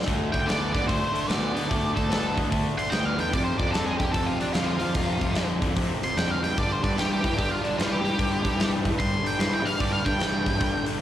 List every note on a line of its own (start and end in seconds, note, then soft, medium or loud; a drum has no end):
0.02 snare medium
0.06 0.32 D2 medium
0.06 0.30 D3 medium
0.06 0.30 A3 medium
0.06 kick loud
0.06 open hi-hat medium
0.32 0.79 D2 medium
0.32 0.45 D3 medium
0.32 0.46 A3 medium
0.32 0.47 G5 medium
0.32 kick medium
0.32 open hi-hat medium
0.46 0.70 D3 medium
0.46 0.71 B3 medium
0.46 0.72 D5 medium
0.46 snare loud
0.46 open hi-hat medium
0.73 0.87 D3 medium
0.73 0.87 B3 medium
0.73 0.87 D5 medium
0.73 kick medium
0.73 open hi-hat medium
0.82 1.01 D2 medium
0.88 1.12 D3 medium
0.88 1.12 A3 medium
0.88 1.29 C5 medium
0.88 kick loud
0.88 open hi-hat medium
1.13 1.27 D3 medium
1.13 1.27 A3 medium
1.13 open hi-hat medium
1.29 1.54 D2 medium
1.29 1.53 D3 medium
1.29 1.53 B3 medium
1.29 1.94 D5 medium
1.29 snare loud
1.29 open hi-hat medium
1.54 1.68 D3 medium
1.54 1.70 D3 medium
1.54 1.68 B3 medium
1.54 open hi-hat medium
1.69 1.95 D2 medium
1.69 1.92 D3 medium
1.69 1.93 A3 medium
1.69 kick loud
1.69 open hi-hat medium
1.94 2.08 D3 medium
1.94 2.09 A3 medium
1.94 2.36 A4 medium
1.94 kick medium
1.94 open hi-hat medium
1.98 2.42 D2 medium
2.10 2.34 D3 medium
2.10 2.34 B3 loud
2.10 snare loud
2.10 open hi-hat medium
2.35 2.49 D3 medium
2.35 2.50 B3 medium
2.35 kick medium
2.35 open hi-hat medium
2.46 2.64 D2 medium
2.50 2.75 D3 medium
2.50 2.75 A3 medium
2.50 kick loud
2.50 open hi-hat medium
2.77 2.91 D3 medium
2.77 2.91 A3 medium
2.77 2.92 C6 medium
2.77 open hi-hat medium
2.90 3.17 D2 medium
2.90 3.16 D3 medium
2.90 3.16 B3 medium
2.90 3.05 G5 medium
2.90 snare loud
2.90 open hi-hat medium
3.05 3.19 F5 medium
3.17 3.32 E2 medium
3.17 3.31 D3 medium
3.17 3.31 B3 medium
3.17 3.33 G5 medium
3.17 open hi-hat soft
3.32 3.56 F2 medium
3.32 3.58 F2 medium
3.32 3.56 C3 medium
3.32 3.44 D5 medium
3.32 kick loud
3.32 open hi-hat medium
3.44 3.58 C5 medium
3.58 3.72 F2 medium
3.58 4.04 F2 medium
3.58 3.72 C3 medium
3.58 3.72 D5 medium
3.58 kick medium
3.58 open hi-hat medium
3.71 3.97 F2 medium
3.71 3.97 D3 medium
3.71 3.86 A4 medium
3.71 open hi-hat medium
3.75 snare loud
3.86 3.98 G#4 medium
3.98 4.12 F2 medium
3.98 4.13 D3 medium
3.98 4.12 G4 medium
3.98 kick medium
3.98 open hi-hat medium
4.07 4.26 F2 medium
4.12 4.37 F2 medium
4.12 4.37 C3 medium
4.12 4.26 A4 medium
4.12 kick loud
4.12 open hi-hat medium
4.26 4.40 F4 medium
4.40 4.53 F2 medium
4.40 4.53 C3 medium
4.40 4.53 D4 medium
4.40 open hi-hat medium
4.53 4.78 F2 medium
4.53 4.79 F2 medium
4.53 4.79 D3 medium
4.53 4.65 F4 medium
4.53 snare loud
4.53 open hi-hat medium
4.67 5.46 F4 medium
4.80 4.94 F2 medium
4.80 4.94 D3 medium
4.80 4.94 F3 medium
4.80 open hi-hat soft
4.95 5.19 F2 medium
4.95 5.19 C3 medium
4.95 kick medium
4.95 open hi-hat medium
5.21 5.66 F2 medium
5.21 5.34 F2 medium
5.21 5.35 C3 medium
5.21 kick medium
5.21 open hi-hat medium
5.35 5.59 F2 medium
5.35 5.59 D3 medium
5.35 snare loud
5.35 open hi-hat medium
5.61 5.74 F2 medium
5.61 5.75 D3 medium
5.61 kick medium
5.61 open hi-hat medium
5.69 5.88 F2 medium
5.75 5.99 F2 medium
5.75 6.00 C3 medium
5.75 kick loud
5.75 open hi-hat medium
6.02 6.15 F2 medium
6.02 6.15 C3 medium
6.02 6.17 C6 medium
6.02 open hi-hat medium
6.16 6.40 F2 medium
6.16 6.40 D3 medium
6.16 6.31 G5 medium
6.16 snare loud
6.16 open hi-hat medium
6.31 6.43 F5 medium
6.42 6.55 F2 medium
6.42 6.56 G2 medium
6.42 6.55 D3 medium
6.42 6.57 G5 medium
6.42 open hi-hat medium
6.56 6.80 G2 medium
6.56 6.82 G2 medium
6.56 6.80 D3 medium
6.56 6.72 D5 medium
6.56 kick loud
6.56 open hi-hat medium
6.72 6.84 C5 medium
6.81 6.95 G2 medium
6.81 7.28 G2 medium
6.81 6.96 D3 medium
6.81 6.97 D5 medium
6.81 kick medium
6.81 open hi-hat medium
6.96 7.20 G2 medium
6.96 7.21 E3 medium
6.96 7.11 G4 medium
6.96 snare loud
6.96 open hi-hat medium
7.12 7.24 G4 medium
7.22 7.35 G2 medium
7.22 7.36 E3 medium
7.22 7.37 G4 medium
7.22 kick medium
7.22 open hi-hat medium
7.30 7.49 G2 medium
7.36 7.61 G2 medium
7.36 7.61 D3 medium
7.36 7.51 G4 medium
7.36 kick loud
7.36 open hi-hat medium
7.51 7.64 F4 medium
7.62 7.76 G2 medium
7.62 7.76 D3 medium
7.62 7.78 D4 medium
7.62 open hi-hat soft
7.77 8.01 G2 medium
7.77 8.03 G2 medium
7.77 8.01 E3 medium
7.77 7.92 F4 medium
7.77 snare loud
7.77 open hi-hat medium
7.92 8.70 G4 medium
8.03 8.16 G2 medium
8.03 8.17 E3 medium
8.03 8.18 G3 medium
8.03 open hi-hat soft
8.17 8.41 G2 medium
8.17 8.43 G2 medium
8.17 8.41 D3 loud
8.17 kick loud
8.17 open hi-hat medium
8.43 8.56 G2 medium
8.43 8.89 G2 medium
8.43 8.57 D3 medium
8.43 kick medium
8.43 open hi-hat medium
8.57 8.81 G2 medium
8.57 8.82 E3 medium
8.57 snare loud
8.57 open hi-hat medium
8.83 8.95 G2 medium
8.83 8.96 E3 medium
8.83 kick medium
8.83 open hi-hat medium
8.92 9.11 G2 medium
8.97 9.21 G2 medium
8.97 9.21 D3 loud
8.97 9.25 C6 loud
8.97 kick loud
8.97 open hi-hat medium
9.24 9.37 G2 medium
9.24 9.38 D3 medium
9.24 9.40 G5 medium
9.24 open hi-hat medium
9.39 9.62 G2 medium
9.39 9.64 G2 medium
9.39 9.63 E3 loud
9.39 9.53 C6 medium
9.39 snare loud
9.39 open hi-hat medium
9.54 9.66 G5 medium
9.64 9.77 G2 medium
9.64 9.78 E3 medium
9.64 9.79 G3 medium
9.64 9.81 F5 medium
9.64 open hi-hat medium
9.79 10.03 G2 medium
9.79 10.04 G2 medium
9.79 10.03 D3 medium
9.79 9.92 D5 medium
9.79 kick loud
9.79 open hi-hat medium
9.93 10.06 F5 medium
10.05 10.17 G2 medium
10.05 10.50 G2 medium
10.05 10.19 D3 medium
10.05 10.84 G5 medium
10.05 kick medium
10.05 open hi-hat medium
10.19 10.43 G2 medium
10.19 10.43 E3 medium
10.19 snare loud
10.19 open hi-hat medium
10.45 10.58 G2 medium
10.45 10.59 E3 medium
10.45 kick medium
10.45 open hi-hat medium
10.54 10.72 G2 medium
10.59 10.83 G2 medium
10.59 10.83 D3 medium
10.59 kick loud
10.59 open hi-hat medium
10.84 10.98 G2 medium
10.84 10.99 D3 medium
10.84 open hi-hat medium